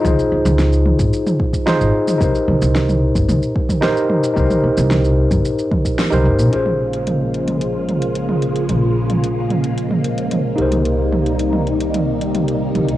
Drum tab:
HH |----------------|----------------|----------------|x--xx-xxx-xxx-xx|
SH |xx-xxx-xxx-xxx-x|xx-xxx-xxx-xxx-x|xx-xxx-xxx-xxx-x|----------------|
SD |----o-------o---|----o-------o---|----o-------o---|----------------|
T2 |o--o--o--o--o--o|--o--o--o--o--o-|-o--o--o--o--o--|-o--o--o--o--o--|
BD |o------o--oo----|o------o--oo----|o------o--oo----|----------------|

HH |x--xx-xxx-xxx-xx|x--xx-xxx-xxx-xx|
SH |----------------|----------------|
SD |----------------|----------------|
T2 |o--o--o--o--o--o|--o--o--o--o--o-|
BD |----------------|----------------|